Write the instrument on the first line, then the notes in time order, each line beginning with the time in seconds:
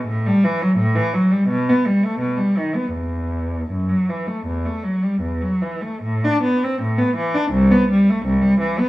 cello
0.07 A2
0.26 G3
0.44 E3
0.61 F#3
0.77 A2
0.95 E3
1.14 F#3
1.31 G3
1.48 B2
1.69 B3
1.86 G3
2.03 A3
2.20 B2
2.37 G3
2.58 D#3
2.75 B3
2.93 E2
3.71 F#2
3.89 F#3
4.09 E3
4.27 A3
4.46 E2
4.65 A3
4.83 F#3
5.03 G3
5.21 E2
5.41 F#3
5.61 E3
5.81 A3
6.03 A2
6.24 D4
6.43 B3
6.64 C4
6.82 A2
6.98 B3
7.17 E3
7.34 D4
7.52 C2
7.71 B3
7.91 G3
8.10 A3
8.26 C2
8.42 G3
8.60 E3
8.79 B3